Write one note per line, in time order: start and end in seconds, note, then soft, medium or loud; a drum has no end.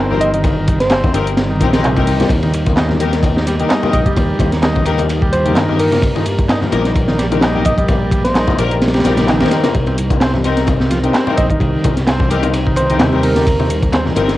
0.00 1.07 G1 loud
0.00 9.71 G3 medium
0.00 0.32 C4 medium
0.00 2.26 C4 medium
0.00 2.26 D#4 medium
0.00 2.27 A#4 medium
0.10 0.18 C4 medium
0.10 0.18 D#4 medium
0.10 0.18 G4 medium
0.10 0.18 A#4 medium
0.10 low conga medium
0.21 0.29 D#5 medium
0.21 closed hi-hat medium
0.21 muted conga soft
0.34 0.79 D#3 medium
0.34 0.41 D#5 medium
0.34 closed hi-hat soft
0.44 kick loud
0.44 closed hi-hat soft
0.44 ride medium
0.44 muted conga medium
0.68 kick loud
0.68 closed hi-hat medium
0.68 ride medium
0.80 1.27 C5 medium
0.80 snare soft
0.80 closed hi-hat soft
0.80 muted conga soft
0.90 1.13 C4 medium
0.90 snare loud
0.90 clap loud
0.90 closed hi-hat soft
0.90 ride medium
1.04 kick loud
1.04 muted conga medium
1.04 high conga medium
1.04 low conga medium
1.14 1.60 G1 loud
1.14 1.19 G3 medium
1.14 1.23 C4 medium
1.14 1.23 D#4 medium
1.14 1.23 G4 medium
1.14 1.23 A#4 loud
1.14 closed hi-hat medium
1.14 ride medium
1.27 closed hi-hat soft
1.27 ride soft
1.37 snare medium
1.37 closed hi-hat soft
1.37 ride medium
1.37 muted conga soft
1.50 1.83 D#3 medium
1.60 2.00 A#1 medium
1.60 1.70 C4 medium
1.60 1.70 D#4 medium
1.60 1.70 G4 medium
1.60 1.70 A#4 medium
1.60 kick medium
1.60 closed hi-hat medium
1.60 ride medium
1.60 muted conga medium
1.73 1.81 C4 medium
1.73 1.81 D#4 medium
1.73 1.81 G4 medium
1.73 1.81 A#4 medium
1.73 snare loud
1.73 closed hi-hat soft
1.73 ride medium
1.73 high conga loud
1.84 2.19 C3 loud
1.84 clap loud
1.84 closed hi-hat soft
1.96 2.09 C4 medium
1.96 2.09 D#4 medium
1.96 2.09 G4 medium
1.96 2.09 A#4 medium
1.96 kick medium
1.96 ride medium
1.96 muted conga medium
1.96 low conga medium
2.07 2.22 C2 medium
2.07 closed hi-hat medium
2.07 open hi-hat medium
2.20 2.30 G3 medium
2.20 snare medium
2.20 closed hi-hat soft
2.20 muted conga medium
2.20 high conga loud
2.29 3.63 D#2 loud
2.29 9.71 A#3 medium
2.29 5.99 D#4 medium
2.29 14.38 A#4 medium
2.29 kick loud
2.29 closed hi-hat soft
2.29 ride medium
2.43 2.53 D#3 medium
2.43 ride soft
2.43 muted conga medium
2.54 closed hi-hat medium
2.54 ride medium
2.66 kick medium
2.66 closed hi-hat soft
2.66 muted conga medium
2.77 2.88 D#4 medium
2.77 snare loud
2.77 clap loud
2.77 closed hi-hat soft
2.77 ride medium
2.89 2.94 D#3 medium
2.89 snare medium
2.89 low conga medium
3.00 3.09 A#3 medium
3.00 3.09 D#4 medium
3.00 3.09 G4 medium
3.00 3.09 A#4 loud
3.00 closed hi-hat medium
3.00 ride medium
3.00 muted conga soft
3.13 snare medium
3.13 closed hi-hat soft
3.23 kick loud
3.23 closed hi-hat soft
3.23 ride medium
3.23 muted conga medium
3.36 3.46 D#3 medium
3.36 snare medium
3.47 3.55 G3 medium
3.47 snare soft
3.47 closed hi-hat medium
3.47 ride medium
3.59 3.69 D#3 medium
3.59 3.67 A#3 medium
3.59 3.67 D#4 medium
3.59 3.67 G4 medium
3.59 3.67 A#4 medium
3.59 closed hi-hat soft
3.59 muted conga soft
3.70 4.05 D#4 medium
3.70 snare loud
3.70 clap loud
3.70 closed hi-hat soft
3.70 ride medium
3.83 3.90 A#3 medium
3.83 3.90 D#4 medium
3.83 3.90 G4 medium
3.83 3.90 A#4 medium
3.83 muted conga medium
3.83 low conga medium
3.93 4.08 A#1 medium
3.93 4.01 D#5 medium
3.93 kick medium
3.93 closed hi-hat medium
3.93 ride medium
4.06 4.51 G3 medium
4.06 4.13 D#5 medium
4.06 kick medium
4.06 closed hi-hat soft
4.16 4.31 D#2 medium
4.16 kick loud
4.16 closed hi-hat soft
4.16 ride medium
4.16 muted conga medium
4.39 5.56 D#2 loud
4.39 kick medium
4.39 closed hi-hat medium
4.39 ride medium
4.39 muted conga medium
4.52 snare medium
4.52 closed hi-hat soft
4.62 4.85 D#4 medium
4.62 snare loud
4.62 clap loud
4.62 closed hi-hat soft
4.62 ride medium
4.76 kick medium
4.76 muted conga soft
4.76 high conga medium
4.76 low conga medium
4.85 4.95 A#3 medium
4.85 4.91 A#3 medium
4.85 4.95 D#4 medium
4.85 4.95 G4 medium
4.85 4.95 A#4 loud
4.85 closed hi-hat medium
4.85 ride medium
4.98 closed hi-hat soft
4.98 ride soft
4.98 muted conga medium
5.09 closed hi-hat soft
5.09 ride medium
5.22 5.55 G3 medium
5.22 kick medium
5.32 5.52 C5 loud
5.32 closed hi-hat medium
5.32 ride medium
5.32 muted conga medium
5.45 5.53 A#3 medium
5.45 5.53 D#4 medium
5.45 5.53 G4 medium
5.45 5.53 A#4 medium
5.45 closed hi-hat soft
5.45 ride soft
5.45 high conga medium
5.55 6.66 G2 medium
5.55 5.91 D#3 loud
5.55 snare loud
5.55 clap loud
5.55 closed hi-hat soft
5.55 ride medium
5.55 muted conga medium
5.69 5.76 A#3 medium
5.69 5.76 D#4 medium
5.69 5.76 G4 medium
5.69 5.76 A#4 medium
5.69 low conga medium
5.79 6.45 A#4 loud
5.79 closed hi-hat medium
5.79 open hi-hat medium
5.92 6.02 A#3 medium
5.92 snare medium
5.92 closed hi-hat soft
5.92 muted conga medium
5.92 high conga medium
6.02 9.71 D5 medium
6.02 kick loud
6.02 closed hi-hat soft
6.02 ride medium
6.15 6.25 D#3 medium
6.15 ride soft
6.15 muted conga medium
6.26 closed hi-hat medium
6.26 ride medium
6.39 kick medium
6.39 closed hi-hat soft
6.49 6.61 D#4 medium
6.49 snare loud
6.49 clap loud
6.49 closed hi-hat soft
6.49 ride medium
6.49 muted conga medium
6.61 6.66 D#3 medium
6.61 snare soft
6.61 low conga medium
6.72 8.52 A#1 loud
6.72 6.81 A#3 medium
6.72 6.81 D#4 medium
6.72 6.81 G4 medium
6.72 6.81 A#4 loud
6.72 closed hi-hat medium
6.72 ride medium
6.72 muted conga medium
6.85 snare soft
6.85 closed hi-hat soft
6.95 kick loud
6.95 closed hi-hat soft
6.95 ride medium
7.08 7.18 D#3 medium
7.08 snare medium
7.08 muted conga medium
7.18 7.27 G3 medium
7.18 snare medium
7.18 closed hi-hat medium
7.18 ride medium
7.31 7.41 D#3 medium
7.31 7.39 A#3 medium
7.31 7.39 D#4 medium
7.31 7.39 G4 medium
7.31 7.39 A#4 medium
7.31 closed hi-hat soft
7.31 muted conga medium
7.41 7.77 D#4 medium
7.41 snare loud
7.41 clap loud
7.41 closed hi-hat soft
7.41 ride medium
7.55 7.62 A#3 medium
7.55 7.62 D#4 medium
7.55 7.62 G4 medium
7.55 7.62 A#4 medium
7.55 low conga medium
7.65 7.74 D#5 medium
7.65 kick loud
7.65 closed hi-hat medium
7.65 ride medium
7.65 muted conga soft
7.78 8.23 G3 medium
7.78 7.85 D#5 medium
7.78 kick loud
7.78 closed hi-hat soft
7.88 kick loud
7.88 closed hi-hat soft
7.88 ride medium
7.88 muted conga medium
8.11 kick loud
8.11 closed hi-hat medium
8.11 ride medium
8.24 8.71 C5 loud
8.24 snare soft
8.24 closed hi-hat soft
8.24 muted conga medium
8.35 8.57 D#4 medium
8.35 snare loud
8.35 clap loud
8.35 closed hi-hat soft
8.35 ride medium
8.47 kick medium
8.47 muted conga medium
8.47 high conga medium
8.47 low conga medium
8.58 9.04 A#1 loud
8.58 8.67 A#3 medium
8.58 8.63 A#3 medium
8.58 8.67 D#4 medium
8.58 8.67 G4 medium
8.58 8.67 A#4 loud
8.58 closed hi-hat medium
8.58 ride medium
8.71 closed hi-hat soft
8.71 ride soft
8.82 snare medium
8.82 closed hi-hat soft
8.82 ride medium
8.82 swell medium
8.82 muted conga medium
8.88 snare medium
8.88 ride medium
8.94 9.27 G3 medium
8.94 snare medium
8.94 ride medium
9.00 snare medium
9.00 ride medium
9.04 9.45 A#1 medium
9.04 9.14 A#3 medium
9.04 9.14 D#4 medium
9.04 9.14 G4 medium
9.04 9.14 A#4 loud
9.04 snare medium
9.04 closed hi-hat medium
9.04 ride medium
9.04 muted conga medium
9.17 9.25 A#3 medium
9.17 9.25 D#4 medium
9.17 9.25 G4 medium
9.17 9.25 A#4 medium
9.17 snare medium
9.17 closed hi-hat soft
9.17 ride medium
9.17 high conga medium
9.28 9.63 D#3 loud
9.28 snare loud
9.28 clap loud
9.28 closed hi-hat soft
9.28 ride medium
9.40 9.53 A#3 medium
9.40 9.53 D#4 medium
9.40 9.53 G4 medium
9.40 9.53 A#4 medium
9.40 snare loud
9.40 ride medium
9.40 muted conga medium
9.40 low conga medium
9.46 snare medium
9.46 ride medium
9.51 snare loud
9.51 closed hi-hat medium
9.51 ride medium
9.63 9.74 A#3 medium
9.63 snare loud
9.63 closed hi-hat soft
9.63 ride medium
9.63 muted conga medium
9.63 high conga medium
9.74 11.08 C2 loud
9.74 14.38 G3 medium
9.74 14.38 C4 medium
9.74 14.38 D#4 medium
9.74 kick loud
9.74 closed hi-hat soft
9.74 ride medium
9.87 9.97 C3 medium
9.87 ride soft
9.87 muted conga medium
9.98 closed hi-hat medium
9.98 ride medium
10.10 kick medium
10.10 closed hi-hat soft
10.10 muted conga medium
10.21 10.33 C4 medium
10.21 snare loud
10.21 clap loud
10.21 closed hi-hat soft
10.21 ride medium
10.34 10.38 C3 medium
10.34 snare medium
10.34 low conga medium
10.44 10.53 C4 medium
10.44 10.53 D#4 medium
10.44 10.53 G4 medium
10.44 10.53 A#4 loud
10.44 closed hi-hat medium
10.44 ride medium
10.44 muted conga medium
10.57 snare soft
10.57 closed hi-hat soft
10.67 kick loud
10.67 closed hi-hat soft
10.67 ride medium
10.67 muted conga medium
10.80 10.90 C3 medium
10.80 snare medium
10.90 10.99 F3 medium
10.90 snare soft
10.90 closed hi-hat medium
10.90 ride medium
11.03 11.13 C3 medium
11.03 11.11 C4 medium
11.03 11.11 D#4 medium
11.03 11.11 G4 medium
11.03 11.11 A#4 medium
11.03 closed hi-hat soft
11.03 muted conga medium
11.14 11.49 C4 medium
11.14 snare loud
11.14 clap loud
11.14 closed hi-hat soft
11.14 ride medium
11.27 11.34 C4 medium
11.27 11.34 D#4 medium
11.27 11.34 G4 medium
11.27 11.34 A#4 medium
11.27 muted conga medium
11.27 low conga medium
11.37 11.52 A#1 medium
11.37 11.46 D#5 medium
11.37 kick medium
11.37 closed hi-hat medium
11.37 ride medium
11.50 11.95 D#3 medium
11.50 11.57 D#5 medium
11.50 kick medium
11.50 closed hi-hat soft
11.60 11.75 C2 loud
11.60 kick loud
11.60 closed hi-hat soft
11.60 ride medium
11.60 muted conga medium
11.84 13.00 C2 loud
11.84 kick medium
11.84 closed hi-hat medium
11.84 ride medium
11.84 muted conga medium
11.97 snare soft
11.97 closed hi-hat soft
12.07 12.29 C4 medium
12.07 snare loud
12.07 clap loud
12.07 closed hi-hat soft
12.07 ride loud
12.19 kick medium
12.19 muted conga medium
12.19 high conga medium
12.19 low conga medium
12.30 12.35 G3 medium
12.30 12.39 C4 medium
12.30 12.39 D#4 medium
12.30 12.39 G4 medium
12.30 12.39 A#4 loud
12.30 closed hi-hat medium
12.30 ride medium
12.43 closed hi-hat soft
12.43 ride soft
12.43 muted conga medium
12.53 closed hi-hat soft
12.53 ride medium
12.66 12.99 D#3 medium
12.66 kick medium
12.76 12.96 C5 loud
12.76 closed hi-hat medium
12.76 ride medium
12.76 muted conga medium
12.90 12.97 C4 medium
12.90 12.97 D#4 medium
12.90 12.97 G4 medium
12.90 12.97 A#4 medium
12.90 closed hi-hat soft
12.90 ride soft
12.90 high conga loud
12.99 14.10 D#2 loud
12.99 13.35 C3 loud
12.99 snare loud
12.99 clap loud
12.99 closed hi-hat soft
12.99 ride medium
12.99 muted conga medium
13.13 13.20 C4 medium
13.13 13.20 D#4 medium
13.13 13.20 G4 medium
13.13 13.20 A#4 medium
13.13 low conga medium
13.23 13.89 A#4 loud
13.23 closed hi-hat medium
13.23 open hi-hat medium
13.36 13.46 G3 medium
13.36 snare medium
13.36 closed hi-hat soft
13.36 muted conga medium
13.36 high conga medium
13.47 kick loud
13.47 closed hi-hat soft
13.47 ride loud
13.59 13.69 C3 medium
13.59 ride soft
13.59 muted conga medium
13.70 closed hi-hat medium
13.70 ride medium
13.82 kick medium
13.82 closed hi-hat soft
13.92 14.05 C4 medium
13.92 snare loud
13.92 clap loud
13.92 closed hi-hat soft
13.92 ride loud
13.92 muted conga medium
14.06 14.10 C3 medium
14.06 snare medium
14.06 low conga medium
14.16 14.38 G1 loud
14.16 14.25 C4 medium
14.16 14.25 D#4 medium
14.16 14.25 G4 medium
14.16 14.25 A#4 loud
14.16 closed hi-hat medium
14.16 ride medium
14.16 muted conga medium
14.28 snare medium
14.28 closed hi-hat soft